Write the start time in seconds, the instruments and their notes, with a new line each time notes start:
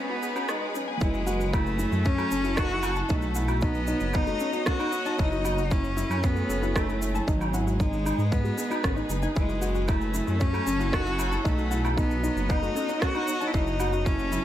Already playing: detuned saw bass G#2, string section G#3 D#4 G#4 B4, cello B3
0.10 felt piano B3, synth arpeggio sound F#4
0.23 synth arpeggio sound G#4, shaker
0.35 felt piano C#4, synth arpeggio sound F#4, low woodblock, shaker
0.49 detuned saw bass B1, cello G#3, felt piano D#4, synth arpeggio sound G#4, cross-stick, shaker
0.62 synth arpeggio sound D#4
0.74 cello F#3, felt piano C#4, synth arpeggio sound D#4, shaker
0.88 felt piano B3, synth arpeggio sound G#5
1.01 detuned saw bass F#1, string section F#3, cello G#3, synth arpeggio sound E4, felt piano E4, kick, shaker
1.14 synth arpeggio sound F#4, shaker
1.19 string section C#4
1.27 felt piano F#4, synth arpeggio sound F#5, shaker
1.40 synth arpeggio sound F#4, shaker
1.53 cello A3, felt piano E4, kick, low woodblock, shaker
1.67 shaker
1.79 felt piano E4, synth arpeggio sound E4, shaker
1.90 detuned saw bass F#2, synth arpeggio sound E4, string section A4, shaker
2.05 felt piano C#4, cello C#4, synth arpeggio sound C#5, kick, shaker
2.18 felt piano A3, synth arpeggio sound F#4, low woodblock, shaker
2.31 detuned saw bass F#1, felt piano C#4, synth arpeggio sound A4, shaker
2.44 felt piano E4, synth arpeggio sound F#4, shaker
2.57 felt piano D#4, cello F#4, synth arpeggio sound A4, kick, cross-stick, shaker
2.70 synth arpeggio sound E4, felt piano E4, shaker
2.83 synth arpeggio sound E4, low woodblock, shaker
2.96 felt piano E4, synth arpeggio sound A5, shaker
3.09 detuned saw bass B1, cello A3, string section B3, felt piano D#4, synth arpeggio sound D#4, kick, shaker
3.22 synth arpeggio sound F#4, shaker
3.35 felt piano E4, synth arpeggio sound F#5, shaker
3.48 synth arpeggio sound F#4, low woodblock, shaker
3.61 cello B3, felt piano D#4, string section F#4 D#5, kick, shaker
3.69 string section C#5
3.75 shaker
3.87 felt piano D#4, synth arpeggio sound D#4, shaker
4.00 detuned saw bass F#1, synth arpeggio sound D#4, shaker
4.13 felt piano B3, cello D#4, synth arpeggio sound B4, kick, low woodblock, shaker
4.27 felt piano A3, synth arpeggio sound F#4, shaker
4.40 felt piano C#4, synth arpeggio sound A4, shaker
4.53 felt piano D#4, synth arpeggio sound F#4, shaker
4.66 felt piano C#4, cello F#4, synth arpeggio sound A4, kick, cross-stick, shaker
4.79 felt piano D#4, synth arpeggio sound D#4, low woodblock, shaker
4.92 synth arpeggio sound D#4, shaker
5.05 felt piano D#4, synth arpeggio sound A5, shaker
5.18 detuned saw bass F#1, string section F#3, cello D#4, felt piano E4, synth arpeggio sound E4, kick, shaker
5.32 string section C#4, synth arpeggio sound F#4, shaker
5.44 felt piano F#4, synth arpeggio sound F#5, low woodblock, shaker
5.58 synth arpeggio sound F#4, shaker
5.70 cello C#4, felt piano E4, kick, shaker
5.84 shaker
5.97 felt piano E4, synth arpeggio sound E4, shaker
6.03 string section A4
6.10 detuned saw bass F#2, synth arpeggio sound E4, string section G#4, low woodblock, shaker
6.23 cello B3, felt piano C#4, synth arpeggio sound C#5, kick, shaker
6.36 felt piano A3, synth arpeggio sound F#4, shaker
6.49 detuned saw bass F#1, felt piano C#4, synth arpeggio sound A4, shaker
6.62 felt piano E4, synth arpeggio sound F#4, shaker
6.75 cello A3, felt piano D#4, synth arpeggio sound A4, kick, cross-stick, low woodblock, shaker
6.88 felt piano E4, synth arpeggio sound E4, shaker
7.02 synth arpeggio sound E4, shaker
7.14 felt piano E4, synth arpeggio sound A5, shaker
7.27 detuned saw bass G#1, cello F#3, string section G#3, felt piano D#4, synth arpeggio sound D#4, kick, shaker
7.41 synth arpeggio sound F#4, low woodblock, shaker
7.54 felt piano E4, synth arpeggio sound F#5, shaker
7.67 synth arpeggio sound F#4, shaker
7.80 cello G#3, felt piano D#4, string section D#4, kick, shaker
7.93 shaker
8.06 felt piano D#4, synth arpeggio sound D#4, low woodblock, shaker
8.18 detuned saw bass G#2, synth arpeggio sound D#4, string section B4, shaker
8.31 felt piano B3, cello B3, synth arpeggio sound B4, kick, shaker
8.44 felt piano G#3, synth arpeggio sound F#4, shaker
8.57 felt piano B3, synth arpeggio sound G#4, shaker
8.70 felt piano D#4, synth arpeggio sound F#4, low woodblock, shaker
8.83 detuned saw bass G#1, felt piano C#4, synth arpeggio sound G#4, kick, cross-stick, shaker
8.96 felt piano D#4, synth arpeggio sound D#4, shaker
9.09 detuned saw bass F#1, synth arpeggio sound D#4, shaker
9.22 felt piano D#4, synth arpeggio sound G#5, shaker
9.35 detuned saw bass F#1, string section F#3, cello G#3, felt piano E4, synth arpeggio sound E4, kick, shaker
9.49 synth arpeggio sound F#4, shaker
9.61 felt piano F#4, synth arpeggio sound F#5, shaker
9.69 string section C#4
9.75 synth arpeggio sound F#4, shaker
9.88 cello A3, felt piano E4, kick, low woodblock, shaker
10.01 shaker
10.14 felt piano E4, synth arpeggio sound E4, shaker
10.27 detuned saw bass F#2, synth arpeggio sound E4, string section A4, shaker
10.40 felt piano C#4, cello C#4, synth arpeggio sound C#5, kick, shaker
10.53 felt piano A3, synth arpeggio sound F#4, low woodblock, shaker
10.66 detuned saw bass F#1, felt piano C#4, synth arpeggio sound A4, shaker
10.80 felt piano E4, synth arpeggio sound F#4, shaker
10.92 felt piano D#4, cello F#4, synth arpeggio sound A4, kick, cross-stick, shaker
11.05 felt piano E4, synth arpeggio sound E4, shaker
11.19 synth arpeggio sound E4, low woodblock, shaker
11.32 felt piano E4, synth arpeggio sound A5, shaker
11.44 detuned saw bass B1, cello A3, string section B3, felt piano D#4, synth arpeggio sound D#4, kick, shaker
11.58 synth arpeggio sound F#4, shaker
11.67 string section F#4
11.71 felt piano E4, synth arpeggio sound F#5, shaker
11.84 synth arpeggio sound F#4, low woodblock, shaker
11.97 cello B3, felt piano D#4, kick, shaker
12.11 shaker
12.23 felt piano D#4, synth arpeggio sound D#4, string section C#5, shaker
12.28 string section D#5
12.36 detuned saw bass F#1, synth arpeggio sound D#4, shaker
12.49 felt piano B3, cello D#4, synth arpeggio sound B4, kick, low woodblock, shaker
12.62 felt piano A3, synth arpeggio sound F#4, shaker
12.75 felt piano C#4, synth arpeggio sound A4, shaker
12.89 felt piano D#4, synth arpeggio sound F#4, shaker
13.02 felt piano C#4, cello F#4, synth arpeggio sound A4, kick, cross-stick, shaker
13.15 synth arpeggio sound D#4, felt piano D#4, low woodblock, shaker
13.28 synth arpeggio sound D#4, shaker
13.41 felt piano D#4, synth arpeggio sound A5, shaker
13.47 cello E4
13.54 detuned saw bass F#1, string section F#3, cello D#4, synth arpeggio sound E4, felt piano E4, kick, shaker
13.67 synth arpeggio sound F#4, shaker
13.80 felt piano F#4, synth arpeggio sound F#5, low woodblock, shaker
13.93 synth arpeggio sound F#4, shaker
13.99 string section A4
14.05 cello C#4, string section C#4, felt piano E4, kick, shaker
14.19 shaker
14.32 felt piano E4, synth arpeggio sound E4, shaker